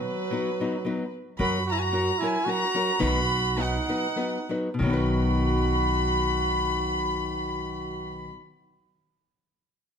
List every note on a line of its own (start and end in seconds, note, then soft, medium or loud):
0.00 1.12 F#3 medium
0.00 1.12 B4 medium
0.31 0.49 F#3 medium
0.31 0.49 B3 medium
0.31 0.50 D#4 medium
0.31 0.50 B4 medium
0.60 0.75 F#3 medium
0.60 0.76 B3 medium
0.60 0.76 D#4 medium
0.60 0.76 B4 medium
0.85 1.03 F#3 medium
0.85 1.03 B3 medium
0.85 1.04 D#4 medium
0.85 1.04 B4 medium
1.39 2.09 F#2 medium
1.39 1.56 F#3 medium
1.39 1.57 C#4 medium
1.39 1.65 F#4 medium
1.39 1.57 F#4 medium
1.39 1.57 A#4 medium
1.39 1.66 B5 medium
1.66 1.73 F#4 medium
1.70 1.81 E4 medium
1.70 1.75 A#5 medium
1.77 2.20 F#4 medium
1.77 1.82 G#5 medium
1.82 2.22 A#5 loud
1.92 2.10 F#3 soft
1.92 2.10 C#4 medium
1.92 2.10 F#4 medium
1.92 2.10 A#4 medium
2.18 2.36 F#3 soft
2.18 2.36 C#4 soft
2.18 2.46 E4 medium
2.23 2.37 F#4 medium
2.23 2.37 A#4 soft
2.23 2.47 G#5 loud
2.45 2.63 F#3 medium
2.45 2.64 C#4 medium
2.45 3.02 F#4 medium
2.45 2.64 F#4 medium
2.45 2.64 A#4 soft
2.45 3.01 A#5 loud
2.75 2.90 F#3 medium
2.75 2.90 C#4 medium
2.75 2.91 F#4 medium
2.75 2.91 A#4 medium
2.99 3.77 B1 medium
2.99 3.18 B2 medium
2.99 3.18 D#3 medium
2.99 3.18 F#3 medium
2.99 3.18 B3 medium
2.99 3.18 D#4 loud
2.99 3.61 F#4 loud
2.99 3.18 B4 medium
3.03 3.59 B5 loud
3.57 3.76 F#3 soft
3.57 3.76 B3 medium
3.57 3.76 D#4 medium
3.57 4.52 D#4 medium
3.57 3.76 B4 medium
3.61 4.53 F#5 medium
3.88 4.05 F#3 soft
3.88 4.06 B3 medium
3.88 4.06 D#4 medium
3.88 4.06 B4 medium
4.16 4.37 F#3 soft
4.16 4.37 B3 medium
4.16 4.37 D#4 medium
4.16 4.37 B4 medium
4.49 4.68 F#3 medium
4.49 4.68 B3 soft
4.49 4.68 D#4 medium
4.49 4.69 B4 medium
4.74 8.25 B2 medium
4.79 8.28 B1 medium
4.79 8.30 D#3 medium
4.79 8.34 F#3 medium
4.79 8.27 F#4 medium
4.79 8.30 B5 medium
4.86 8.37 B3 medium
4.86 8.41 D#4 medium
4.93 8.44 B4 medium